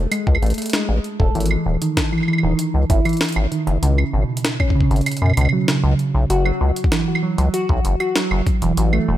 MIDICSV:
0, 0, Header, 1, 4, 480
1, 0, Start_track
1, 0, Tempo, 618557
1, 1049, Time_signature, 4, 2, 24, 8
1, 7119, End_track
2, 0, Start_track
2, 0, Title_t, "Synth pluck"
2, 0, Program_c, 0, 84
2, 89, Note_on_c, 0, 56, 85
2, 179, Note_off_c, 0, 56, 0
2, 328, Note_on_c, 0, 57, 72
2, 419, Note_off_c, 0, 57, 0
2, 448, Note_on_c, 0, 57, 73
2, 563, Note_off_c, 0, 57, 0
2, 569, Note_on_c, 0, 56, 101
2, 659, Note_off_c, 0, 56, 0
2, 929, Note_on_c, 0, 69, 75
2, 983, Note_off_c, 0, 69, 0
2, 1048, Note_on_c, 0, 52, 101
2, 1139, Note_off_c, 0, 52, 0
2, 1168, Note_on_c, 0, 52, 74
2, 1223, Note_off_c, 0, 52, 0
2, 1409, Note_on_c, 0, 51, 76
2, 1499, Note_off_c, 0, 51, 0
2, 1648, Note_on_c, 0, 52, 72
2, 1739, Note_off_c, 0, 52, 0
2, 1768, Note_on_c, 0, 52, 76
2, 1883, Note_off_c, 0, 52, 0
2, 1888, Note_on_c, 0, 51, 100
2, 1979, Note_off_c, 0, 51, 0
2, 2248, Note_on_c, 0, 64, 74
2, 2303, Note_off_c, 0, 64, 0
2, 2369, Note_on_c, 0, 52, 103
2, 2459, Note_off_c, 0, 52, 0
2, 2489, Note_on_c, 0, 52, 80
2, 2543, Note_off_c, 0, 52, 0
2, 2729, Note_on_c, 0, 51, 76
2, 2819, Note_off_c, 0, 51, 0
2, 2969, Note_on_c, 0, 49, 82
2, 3059, Note_off_c, 0, 49, 0
2, 3089, Note_on_c, 0, 49, 77
2, 3203, Note_off_c, 0, 49, 0
2, 3209, Note_on_c, 0, 47, 99
2, 3299, Note_off_c, 0, 47, 0
2, 3569, Note_on_c, 0, 61, 71
2, 3623, Note_off_c, 0, 61, 0
2, 3689, Note_on_c, 0, 49, 102
2, 3779, Note_off_c, 0, 49, 0
2, 3808, Note_on_c, 0, 49, 76
2, 3863, Note_off_c, 0, 49, 0
2, 4049, Note_on_c, 0, 47, 71
2, 4139, Note_off_c, 0, 47, 0
2, 4169, Note_on_c, 0, 49, 75
2, 4260, Note_off_c, 0, 49, 0
2, 4289, Note_on_c, 0, 54, 70
2, 4379, Note_off_c, 0, 54, 0
2, 4409, Note_on_c, 0, 49, 80
2, 4520, Note_off_c, 0, 49, 0
2, 4529, Note_on_c, 0, 49, 76
2, 4584, Note_off_c, 0, 49, 0
2, 4889, Note_on_c, 0, 66, 86
2, 4943, Note_off_c, 0, 66, 0
2, 5009, Note_on_c, 0, 54, 98
2, 5099, Note_off_c, 0, 54, 0
2, 5129, Note_on_c, 0, 54, 73
2, 5183, Note_off_c, 0, 54, 0
2, 5369, Note_on_c, 0, 52, 78
2, 5459, Note_off_c, 0, 52, 0
2, 5608, Note_on_c, 0, 54, 75
2, 5699, Note_off_c, 0, 54, 0
2, 5728, Note_on_c, 0, 54, 80
2, 5843, Note_off_c, 0, 54, 0
2, 5848, Note_on_c, 0, 66, 100
2, 5903, Note_off_c, 0, 66, 0
2, 6209, Note_on_c, 0, 66, 71
2, 6263, Note_off_c, 0, 66, 0
2, 6329, Note_on_c, 0, 54, 96
2, 6420, Note_off_c, 0, 54, 0
2, 6449, Note_on_c, 0, 54, 75
2, 6503, Note_off_c, 0, 54, 0
2, 6688, Note_on_c, 0, 52, 73
2, 6779, Note_off_c, 0, 52, 0
2, 6929, Note_on_c, 0, 57, 79
2, 7019, Note_off_c, 0, 57, 0
2, 7049, Note_on_c, 0, 57, 75
2, 7119, Note_off_c, 0, 57, 0
2, 7119, End_track
3, 0, Start_track
3, 0, Title_t, "Acid bass"
3, 0, Program_c, 1, 38
3, 209, Note_on_c, 1, 37, 85
3, 294, Note_off_c, 1, 37, 0
3, 329, Note_on_c, 1, 33, 104
3, 413, Note_off_c, 1, 33, 0
3, 689, Note_on_c, 1, 33, 91
3, 773, Note_off_c, 1, 33, 0
3, 929, Note_on_c, 1, 28, 81
3, 1014, Note_off_c, 1, 28, 0
3, 1049, Note_on_c, 1, 32, 98
3, 1218, Note_off_c, 1, 32, 0
3, 1288, Note_on_c, 1, 27, 82
3, 1373, Note_off_c, 1, 27, 0
3, 1888, Note_on_c, 1, 27, 81
3, 1973, Note_off_c, 1, 27, 0
3, 2128, Note_on_c, 1, 37, 88
3, 2213, Note_off_c, 1, 37, 0
3, 2249, Note_on_c, 1, 32, 101
3, 2334, Note_off_c, 1, 32, 0
3, 2609, Note_on_c, 1, 32, 88
3, 2693, Note_off_c, 1, 32, 0
3, 2848, Note_on_c, 1, 30, 83
3, 2933, Note_off_c, 1, 30, 0
3, 2968, Note_on_c, 1, 37, 98
3, 3138, Note_off_c, 1, 37, 0
3, 3208, Note_on_c, 1, 32, 80
3, 3293, Note_off_c, 1, 32, 0
3, 3809, Note_on_c, 1, 32, 82
3, 3893, Note_off_c, 1, 32, 0
3, 4049, Note_on_c, 1, 42, 82
3, 4134, Note_off_c, 1, 42, 0
3, 4169, Note_on_c, 1, 37, 99
3, 4254, Note_off_c, 1, 37, 0
3, 4529, Note_on_c, 1, 37, 92
3, 4613, Note_off_c, 1, 37, 0
3, 4769, Note_on_c, 1, 35, 80
3, 4853, Note_off_c, 1, 35, 0
3, 4889, Note_on_c, 1, 30, 95
3, 5058, Note_off_c, 1, 30, 0
3, 5129, Note_on_c, 1, 37, 77
3, 5214, Note_off_c, 1, 37, 0
3, 5729, Note_on_c, 1, 37, 77
3, 5814, Note_off_c, 1, 37, 0
3, 5969, Note_on_c, 1, 35, 87
3, 6054, Note_off_c, 1, 35, 0
3, 6089, Note_on_c, 1, 30, 104
3, 6174, Note_off_c, 1, 30, 0
3, 6449, Note_on_c, 1, 30, 88
3, 6534, Note_off_c, 1, 30, 0
3, 6690, Note_on_c, 1, 28, 85
3, 6774, Note_off_c, 1, 28, 0
3, 6809, Note_on_c, 1, 33, 95
3, 6978, Note_off_c, 1, 33, 0
3, 7049, Note_on_c, 1, 28, 81
3, 7119, Note_off_c, 1, 28, 0
3, 7119, End_track
4, 0, Start_track
4, 0, Title_t, "Drums"
4, 90, Note_on_c, 9, 42, 65
4, 90, Note_on_c, 9, 75, 60
4, 167, Note_off_c, 9, 42, 0
4, 167, Note_off_c, 9, 75, 0
4, 209, Note_on_c, 9, 36, 104
4, 270, Note_on_c, 9, 75, 57
4, 287, Note_off_c, 9, 36, 0
4, 330, Note_on_c, 9, 42, 26
4, 347, Note_off_c, 9, 75, 0
4, 360, Note_off_c, 9, 42, 0
4, 360, Note_on_c, 9, 42, 30
4, 389, Note_off_c, 9, 42, 0
4, 389, Note_on_c, 9, 42, 33
4, 420, Note_off_c, 9, 42, 0
4, 420, Note_on_c, 9, 42, 38
4, 450, Note_off_c, 9, 42, 0
4, 450, Note_on_c, 9, 42, 39
4, 480, Note_off_c, 9, 42, 0
4, 480, Note_on_c, 9, 42, 46
4, 510, Note_off_c, 9, 42, 0
4, 510, Note_on_c, 9, 42, 47
4, 540, Note_off_c, 9, 42, 0
4, 540, Note_on_c, 9, 42, 52
4, 569, Note_off_c, 9, 42, 0
4, 569, Note_on_c, 9, 38, 118
4, 569, Note_on_c, 9, 42, 64
4, 647, Note_off_c, 9, 38, 0
4, 647, Note_off_c, 9, 42, 0
4, 809, Note_on_c, 9, 42, 36
4, 887, Note_off_c, 9, 42, 0
4, 929, Note_on_c, 9, 36, 116
4, 1007, Note_off_c, 9, 36, 0
4, 1049, Note_on_c, 9, 42, 29
4, 1090, Note_off_c, 9, 42, 0
4, 1090, Note_on_c, 9, 42, 41
4, 1130, Note_off_c, 9, 42, 0
4, 1130, Note_on_c, 9, 42, 52
4, 1169, Note_on_c, 9, 75, 50
4, 1207, Note_off_c, 9, 42, 0
4, 1246, Note_off_c, 9, 75, 0
4, 1409, Note_on_c, 9, 42, 52
4, 1487, Note_off_c, 9, 42, 0
4, 1529, Note_on_c, 9, 36, 102
4, 1529, Note_on_c, 9, 38, 122
4, 1529, Note_on_c, 9, 42, 62
4, 1607, Note_off_c, 9, 36, 0
4, 1607, Note_off_c, 9, 38, 0
4, 1607, Note_off_c, 9, 42, 0
4, 1650, Note_on_c, 9, 75, 25
4, 1689, Note_off_c, 9, 75, 0
4, 1689, Note_on_c, 9, 75, 28
4, 1729, Note_off_c, 9, 75, 0
4, 1729, Note_on_c, 9, 75, 35
4, 1769, Note_off_c, 9, 75, 0
4, 1769, Note_on_c, 9, 75, 41
4, 1809, Note_off_c, 9, 75, 0
4, 1809, Note_on_c, 9, 75, 46
4, 1849, Note_off_c, 9, 75, 0
4, 1849, Note_on_c, 9, 75, 51
4, 1926, Note_off_c, 9, 75, 0
4, 2008, Note_on_c, 9, 42, 68
4, 2086, Note_off_c, 9, 42, 0
4, 2249, Note_on_c, 9, 36, 119
4, 2249, Note_on_c, 9, 42, 57
4, 2327, Note_off_c, 9, 36, 0
4, 2327, Note_off_c, 9, 42, 0
4, 2369, Note_on_c, 9, 42, 23
4, 2369, Note_on_c, 9, 75, 47
4, 2399, Note_off_c, 9, 42, 0
4, 2399, Note_on_c, 9, 42, 26
4, 2429, Note_off_c, 9, 42, 0
4, 2429, Note_on_c, 9, 42, 28
4, 2447, Note_off_c, 9, 75, 0
4, 2459, Note_off_c, 9, 42, 0
4, 2459, Note_on_c, 9, 42, 34
4, 2489, Note_off_c, 9, 42, 0
4, 2489, Note_on_c, 9, 38, 117
4, 2489, Note_on_c, 9, 42, 63
4, 2520, Note_off_c, 9, 42, 0
4, 2520, Note_on_c, 9, 42, 39
4, 2549, Note_off_c, 9, 42, 0
4, 2549, Note_on_c, 9, 42, 44
4, 2567, Note_off_c, 9, 38, 0
4, 2579, Note_off_c, 9, 42, 0
4, 2579, Note_on_c, 9, 42, 44
4, 2610, Note_on_c, 9, 75, 48
4, 2657, Note_off_c, 9, 42, 0
4, 2687, Note_off_c, 9, 75, 0
4, 2730, Note_on_c, 9, 42, 35
4, 2807, Note_off_c, 9, 42, 0
4, 2850, Note_on_c, 9, 42, 52
4, 2928, Note_off_c, 9, 42, 0
4, 2970, Note_on_c, 9, 42, 64
4, 3047, Note_off_c, 9, 42, 0
4, 3090, Note_on_c, 9, 75, 51
4, 3167, Note_off_c, 9, 75, 0
4, 3390, Note_on_c, 9, 42, 52
4, 3450, Note_off_c, 9, 42, 0
4, 3450, Note_on_c, 9, 38, 110
4, 3450, Note_on_c, 9, 42, 60
4, 3527, Note_off_c, 9, 38, 0
4, 3527, Note_off_c, 9, 42, 0
4, 3569, Note_on_c, 9, 36, 107
4, 3570, Note_on_c, 9, 75, 56
4, 3647, Note_off_c, 9, 36, 0
4, 3647, Note_off_c, 9, 75, 0
4, 3649, Note_on_c, 9, 36, 90
4, 3727, Note_off_c, 9, 36, 0
4, 3729, Note_on_c, 9, 36, 76
4, 3807, Note_off_c, 9, 36, 0
4, 3810, Note_on_c, 9, 42, 23
4, 3850, Note_off_c, 9, 42, 0
4, 3850, Note_on_c, 9, 42, 28
4, 3889, Note_off_c, 9, 42, 0
4, 3889, Note_on_c, 9, 42, 31
4, 3929, Note_off_c, 9, 42, 0
4, 3929, Note_on_c, 9, 42, 65
4, 3929, Note_on_c, 9, 75, 55
4, 3969, Note_off_c, 9, 42, 0
4, 3969, Note_on_c, 9, 42, 40
4, 4007, Note_off_c, 9, 75, 0
4, 4009, Note_off_c, 9, 42, 0
4, 4009, Note_on_c, 9, 42, 45
4, 4049, Note_on_c, 9, 75, 24
4, 4079, Note_off_c, 9, 75, 0
4, 4079, Note_on_c, 9, 75, 27
4, 4086, Note_off_c, 9, 42, 0
4, 4109, Note_off_c, 9, 75, 0
4, 4109, Note_on_c, 9, 75, 30
4, 4139, Note_off_c, 9, 75, 0
4, 4139, Note_on_c, 9, 75, 35
4, 4169, Note_off_c, 9, 75, 0
4, 4169, Note_on_c, 9, 42, 58
4, 4169, Note_on_c, 9, 75, 39
4, 4199, Note_off_c, 9, 75, 0
4, 4199, Note_on_c, 9, 75, 41
4, 4229, Note_off_c, 9, 75, 0
4, 4229, Note_on_c, 9, 75, 45
4, 4247, Note_off_c, 9, 42, 0
4, 4259, Note_off_c, 9, 75, 0
4, 4259, Note_on_c, 9, 75, 50
4, 4337, Note_off_c, 9, 75, 0
4, 4409, Note_on_c, 9, 38, 117
4, 4409, Note_on_c, 9, 42, 63
4, 4487, Note_off_c, 9, 38, 0
4, 4487, Note_off_c, 9, 42, 0
4, 4649, Note_on_c, 9, 42, 32
4, 4727, Note_off_c, 9, 42, 0
4, 4889, Note_on_c, 9, 42, 61
4, 4967, Note_off_c, 9, 42, 0
4, 5009, Note_on_c, 9, 75, 48
4, 5086, Note_off_c, 9, 75, 0
4, 5249, Note_on_c, 9, 42, 49
4, 5309, Note_on_c, 9, 36, 101
4, 5326, Note_off_c, 9, 42, 0
4, 5369, Note_on_c, 9, 38, 107
4, 5369, Note_on_c, 9, 42, 60
4, 5387, Note_off_c, 9, 36, 0
4, 5446, Note_off_c, 9, 38, 0
4, 5446, Note_off_c, 9, 42, 0
4, 5549, Note_on_c, 9, 75, 58
4, 5627, Note_off_c, 9, 75, 0
4, 5729, Note_on_c, 9, 42, 47
4, 5807, Note_off_c, 9, 42, 0
4, 5849, Note_on_c, 9, 42, 65
4, 5927, Note_off_c, 9, 42, 0
4, 5969, Note_on_c, 9, 36, 115
4, 6047, Note_off_c, 9, 36, 0
4, 6089, Note_on_c, 9, 42, 54
4, 6167, Note_off_c, 9, 42, 0
4, 6209, Note_on_c, 9, 42, 47
4, 6209, Note_on_c, 9, 75, 47
4, 6286, Note_off_c, 9, 42, 0
4, 6286, Note_off_c, 9, 75, 0
4, 6329, Note_on_c, 9, 38, 116
4, 6329, Note_on_c, 9, 42, 61
4, 6406, Note_off_c, 9, 38, 0
4, 6406, Note_off_c, 9, 42, 0
4, 6449, Note_on_c, 9, 75, 48
4, 6526, Note_off_c, 9, 75, 0
4, 6569, Note_on_c, 9, 36, 103
4, 6569, Note_on_c, 9, 42, 33
4, 6647, Note_off_c, 9, 36, 0
4, 6647, Note_off_c, 9, 42, 0
4, 6689, Note_on_c, 9, 42, 48
4, 6766, Note_off_c, 9, 42, 0
4, 6808, Note_on_c, 9, 42, 61
4, 6886, Note_off_c, 9, 42, 0
4, 6928, Note_on_c, 9, 75, 54
4, 7006, Note_off_c, 9, 75, 0
4, 7119, End_track
0, 0, End_of_file